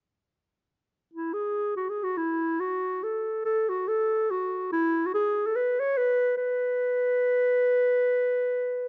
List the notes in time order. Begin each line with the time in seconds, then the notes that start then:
1.13 E4
1.33 G#4
1.76 F#4
1.89 G#4
2.03 F#4
2.17 E4
2.60 F#4
3.03 A4
3.45 A4
3.69 F#4
3.88 A4
4.31 F#4
4.72 E4
5.06 F#4
5.14 G#4
5.46 A4
5.56 B4
5.80 C#5
5.97 B4
6.37 B4